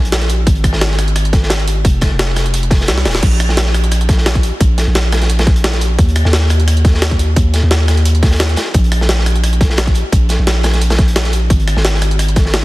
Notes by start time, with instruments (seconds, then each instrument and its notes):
Already playing: 808-style bass A#1
0.05 closed hi-hat
0.12 snare, closed hi-hat
0.21 snare, closed hi-hat
0.30 closed hi-hat
0.47 808-style bass G#1, kick, closed hi-hat
0.55 closed hi-hat
0.64 kick, cross-stick, closed hi-hat
0.73 808-style bass G#1, snare
0.81 snare, closed hi-hat
0.91 snare
0.99 cross-stick, closed hi-hat
1.08 closed hi-hat
1.16 cross-stick, closed hi-hat
1.25 closed hi-hat
1.33 kick, snare, closed hi-hat
1.43 snare
1.50 snare, closed hi-hat
1.60 closed hi-hat
1.68 closed hi-hat
1.85 808-style bass F1, kick, closed hi-hat
2.01 kick, cross-stick, snare, closed hi-hat
2.11 808-style bass F1
2.19 snare, closed hi-hat
2.36 cross-stick, snare, closed hi-hat
2.46 closed hi-hat
2.54 closed hi-hat
2.63 closed hi-hat
2.71 kick, snare, closed hi-hat, open hi-hat
2.81 snare
2.88 808-style bass C2, snare, closed hi-hat
2.98 snare, closed hi-hat
3.05 808-style bass D#1, snare, closed hi-hat
3.10 snare, closed hi-hat
3.14 snare, closed hi-hat
3.23 808-style bass A#1, kick, closed hi-hat, crash
3.32 closed hi-hat
3.40 cross-stick, closed hi-hat
3.49 snare
3.57 snare, closed hi-hat
3.66 snare
3.74 cross-stick, closed hi-hat
3.84 closed hi-hat
3.91 cross-stick, closed hi-hat
4.01 closed hi-hat
4.09 kick, snare, closed hi-hat
4.18 snare
4.26 snare, closed hi-hat
4.35 kick, closed hi-hat
4.43 closed hi-hat
4.61 808-style bass A#1, kick, closed hi-hat
4.78 snare, closed hi-hat
4.87 808-style bass A#1
4.95 snare, closed hi-hat
5.12 cross-stick, snare, closed hi-hat
5.22 snare, closed hi-hat
5.29 closed hi-hat
5.39 snare, closed hi-hat
5.47 kick, snare, closed hi-hat
5.56 closed hi-hat
5.64 snare, closed hi-hat
5.73 snare, closed hi-hat
5.81 closed hi-hat
5.99 808-style bass D#2, kick, closed hi-hat
6.08 closed hi-hat
6.16 cross-stick, closed hi-hat
6.25 808-style bass D#2, snare
6.33 snare, closed hi-hat
6.42 snare
6.50 cross-stick, closed hi-hat
6.60 closed hi-hat
6.68 cross-stick, closed hi-hat
6.77 closed hi-hat
6.85 kick, snare, closed hi-hat
6.94 snare
7.02 snare, closed hi-hat
7.11 kick, closed hi-hat
7.19 closed hi-hat
7.36 808-style bass D#2, kick, closed hi-hat
7.54 snare, closed hi-hat
7.63 808-style bass D#2
7.71 snare, closed hi-hat
7.88 cross-stick, snare, closed hi-hat
7.97 closed hi-hat
8.05 closed hi-hat
8.15 closed hi-hat
8.23 kick, snare, closed hi-hat, open hi-hat
8.31 snare
8.40 snare, closed hi-hat
8.49 closed hi-hat
8.56 snare, closed hi-hat
8.74 808-style bass A#1, kick, closed hi-hat
8.84 closed hi-hat
8.92 cross-stick, closed hi-hat
9.01 snare
9.09 snare, closed hi-hat
9.19 snare
9.26 cross-stick, closed hi-hat
9.36 closed hi-hat
9.44 cross-stick, closed hi-hat
9.53 closed hi-hat
9.61 kick, snare, closed hi-hat
9.70 snare
9.78 snare, closed hi-hat
9.87 kick, closed hi-hat
9.95 closed hi-hat
10.12 808-style bass A#1, kick, closed hi-hat
10.29 snare, closed hi-hat
10.39 808-style bass A#1
10.47 snare, closed hi-hat
10.63 cross-stick, snare, closed hi-hat
10.74 snare, closed hi-hat
10.81 closed hi-hat
10.90 snare, closed hi-hat
10.99 kick, snare, closed hi-hat
11.08 closed hi-hat
11.16 snare, closed hi-hat
11.25 snare, closed hi-hat
11.33 closed hi-hat
11.50 808-style bass G#1, kick, closed hi-hat
11.60 closed hi-hat
11.68 cross-stick, closed hi-hat
11.77 808-style bass G#1, snare
11.85 snare, closed hi-hat
11.94 snare
12.01 cross-stick, closed hi-hat
12.11 closed hi-hat
12.19 cross-stick, closed hi-hat
12.28 closed hi-hat
12.36 kick, snare, closed hi-hat
12.46 snare
12.54 snare, closed hi-hat